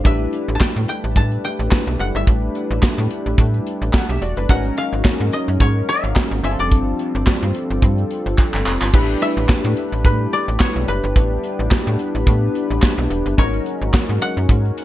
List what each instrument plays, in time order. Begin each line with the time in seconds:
Already playing: koto F5
0.04 fm bass A1, analog synth pad G3 A3 D4, analog polysynth D4 E4 G4 B4, koto E5, kick, closed hi-hat
0.33 closed hi-hat
0.48 fm bass A1, closed hi-hat
0.55 koto A5
0.61 koto G5, kick, snare, clap
0.76 fm bass A2
0.88 koto G5, closed hi-hat
1.04 fm bass A1, closed hi-hat
1.16 fm bass A2, koto A5, kick, closed hi-hat
1.32 closed hi-hat
1.44 koto G5, closed hi-hat
1.59 fm bass A1, closed hi-hat
1.71 kick, snare, clap
1.87 fm bass B1
1.99 fm bass F#1, koto F#5, closed hi-hat
2.15 fm bass G1, koto E5, closed hi-hat
2.27 fm bass A1, kick, closed hi-hat
2.55 closed hi-hat
2.71 fm bass A1, closed hi-hat
2.83 kick, snare, clap
2.98 fm bass A2, closed hi-hat
3.11 closed hi-hat
3.26 fm bass A1, closed hi-hat
3.38 fm bass A2, kick, closed hi-hat
3.54 closed hi-hat
3.67 closed hi-hat
3.82 fm bass A1, closed hi-hat
3.93 analog polysynth A4 F#5, kick, snare, clap
4.09 fm bass B1, analog polysynth G4 E5, closed hi-hat
4.22 fm bass E1, analog polysynth F#4 D5, closed hi-hat
4.37 fm bass F#1, analog polysynth D4 B4, closed hi-hat
4.49 fm bass G#1, analog synth pad F#3 G#3 C#4, analog polysynth C#4 D#4 F#4 A#4, koto F#5, kick, closed hi-hat
4.65 closed hi-hat
4.77 koto F5, closed hi-hat
4.93 fm bass G#1, closed hi-hat
5.05 kick, snare, clap
5.20 fm bass G#2, closed hi-hat
5.33 koto D#5, closed hi-hat
5.48 fm bass F#2, closed hi-hat
5.60 fm bass G#2, koto C#5, kick, closed hi-hat
5.89 koto F5, closed hi-hat
6.04 fm bass G#1, closed hi-hat
6.16 kick, snare, clap
6.31 fm bass G#1
6.43 fm bass G1, analog synth pad F3 G3 C4, analog polysynth C4 D4 F4 G#4, koto E5, closed hi-hat
6.51 analog polysynth A4
6.59 fm bass F1, koto D5, closed hi-hat
6.72 fm bass G1, kick, closed hi-hat
6.99 closed hi-hat
7.15 fm bass G1, closed hi-hat
7.27 kick, snare, clap
7.42 fm bass G2, closed hi-hat
7.55 closed hi-hat
7.70 fm bass G1, closed hi-hat
7.82 fm bass G2, kick, closed hi-hat
7.98 closed hi-hat
8.11 closed hi-hat
8.26 fm bass G1, closed hi-hat
8.38 kick, clap
8.54 fm bass G1, clap
8.66 fm bass F1, clap
8.82 fm bass G1, clap
8.93 fm bass A1, analog synth pad G3 A3 D4, analog polysynth D4 E4 G4 B4, kick, crash
9.09 closed hi-hat
9.21 koto E5, closed hi-hat
9.37 fm bass A1, closed hi-hat
9.49 kick, snare, clap
9.65 fm bass A2
9.77 closed hi-hat
9.92 fm bass A1, closed hi-hat
10.05 fm bass A2, koto B4, kick, closed hi-hat
10.33 koto D5, closed hi-hat
10.48 fm bass A1, closed hi-hat
10.60 koto C#5, kick, snare, clap
10.76 fm bass B1, closed hi-hat
10.88 fm bass F#1, koto B4, closed hi-hat
11.04 fm bass G1, closed hi-hat
11.16 fm bass A1, analog synth pad B3, kick, closed hi-hat
11.44 closed hi-hat
11.59 fm bass A1, closed hi-hat
11.71 kick, snare, clap
11.87 fm bass A2
11.99 closed hi-hat
12.15 fm bass A1, closed hi-hat
12.27 fm bass A2, kick, closed hi-hat
12.55 closed hi-hat
12.70 fm bass A1, closed hi-hat
12.82 kick, snare, clap
12.98 fm bass B1, closed hi-hat
13.10 fm bass E1, closed hi-hat
13.26 fm bass F#1, closed hi-hat
13.37 fm bass G#1, analog synth pad F#3 G#3 C#4, analog polysynth C#4 D#4 F#4 A#4, koto C#5, kick, closed hi-hat
13.54 closed hi-hat
13.66 closed hi-hat
13.82 fm bass G#1, closed hi-hat
13.94 kick, snare, clap
14.09 fm bass G#2
14.21 koto F#5, closed hi-hat
14.37 fm bass F#2, closed hi-hat
14.49 fm bass G#2, kick, closed hi-hat
14.65 closed hi-hat
14.78 closed hi-hat